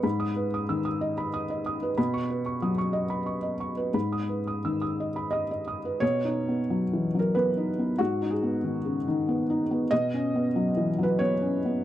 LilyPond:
<<
  \new Staff \with { instrumentName = "Felt piano" } { \time 3/4 \key b \major \tempo 4 = 92 << { b''16 dis'''16 b'16 dis'''16 e'''16 dis'''16 dis''16 b''16 dis'''16 dis''16 dis'''16 b'16 | b''16 cis'''16 b'16 cis'''16 dis'''16 cis'''16 dis''16 b''16 cis'''16 dis''16 cis'''16 b'16 | b''16 dis'''16 b'16 dis'''16 e'''16 dis'''16 dis''16 b''16 dis'''16 dis''16 dis'''16 b'16 | r2. |
r2. | r2. | } \\ { r2. | r2. | r2 dis''4 | cis''4.~ cis''16 ais'16 b'4 |
fis'8 gis'4 r4. | dis''4.~ dis''16 b'16 cis''4 | } >> }
  \new Staff \with { instrumentName = "Felt piano" } { \clef bass \time 3/4 \key b \major gis,4 dis2 | b,4 fis2 | gis,4 dis2 | \tuplet 3/2 { b,8 dis'8 b8 fis8 e8 fis8 b8 dis'8 b8 } |
\tuplet 3/2 { gis,8 dis'8 b8 dis8 cis8 dis8 b8 dis'8 b8 } | \tuplet 3/2 { b,8 cis'8 b8 fis8 e8 fis8 b8 cis'8 b8 } | }
>>